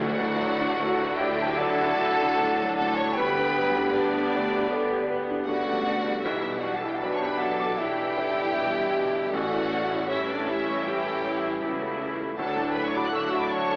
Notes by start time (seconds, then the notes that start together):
Already playing: D2 D3 F#3 A3 D4 F#4 D5 F#5
0.00 D2
0.20 A2
0.40 F#3
0.61 D4
0.78 A3 F#4
0.82 A4
1.01 F#4
1.15 E4 G4 E5 G5
1.21 G4 D5
1.42 A5
1.56 F#3 D4 A4 F#5 A5
1.61 D5
1.81 F#4
1.95 F#3 F#4
2.01 A4
2.22 D4
2.38 A2 A3 D4
2.62 F#3
2.76 A4 F#5 A5
2.82 A2
2.95 C#5 A5 C#6
3.02 F#3
3.13 D2 D3 G3 B3 G4 G5 B5
3.17 D2 B4
3.38 D3
3.55 F#3
3.59 G3
3.78 D4
3.91 G3 B3 D4 B4 D5
3.96 D4 B4
4.17 G4
4.31 A3 D5
4.54 B5
4.68 B3 A4
4.73 D5
4.90 G4
5.08 B3 G4 B4
5.31 D4
5.44 C#2 C#3 A3 A4 D5 F#5
5.48 D3 F#4
5.68 G3
5.87 D3
6.06 G3
6.23 B1 B2 E3 G3 D4 E4 G4 B4 E5
6.44 B2
6.59 F#4 D5 F#5
6.64 G3
6.74 A4 F#5 A5
6.82 E4 E5
6.88 G4 G5
6.94 A4 F#5 A5
7.00 F#3 D4 F#4 A4 D5 G5
7.04 B4 B5
7.14 C#5 A5 C#6
7.19 G4 C#5
7.26 B4 G5 B5
7.37 A4 E5 F#5
7.42 A4 A5
7.60 D6
7.78 E3 E4 G4 E5
7.82 G4 G5
7.99 G4
8.17 D3 G4 D5
8.39 E4
8.56 G1 G2 B2 E3
8.77 G3
8.97 B2
9.15 G3
9.30 A1 A2 A3 C#4 F#4 A4 D5 F#5
9.35 F#4
9.52 E2
9.70 A3 F#4
9.90 E4
10.07 G3 C#4 E4 G4 C#5 E5
10.13 E4
10.25 B4
10.29 D4 A4 D5
10.46 C#5 E5
10.50 E4
10.68 C#6
10.83 E4 G4 E5 G5
10.88 G4
11.06 A4
11.24 E4 C#5
11.43 E4
11.62 C#2 E2 C#3 E4 F#4
11.81 A3
12.00 E2 E4
12.20 A3
12.36 D2 D3 F#3 A3 D4 A4 F#5 A5
12.56 A2
12.70 B4 G5 B5
12.75 A3 B4
12.84 C#5 A5 C#6
12.88 C#5
12.96 F#4 D5 B5 D6
13.04 F#5 D6 F#6
13.09 F#5
13.13 F#3 D4 A4 E5 C#6 E6
13.21 F#5 D6 F#6
13.25 F#5
13.30 F#4 E5 C#6 E6
13.39 B5 D6
13.43 D5
13.51 C#5 F#5 A5 C#6
13.71 A5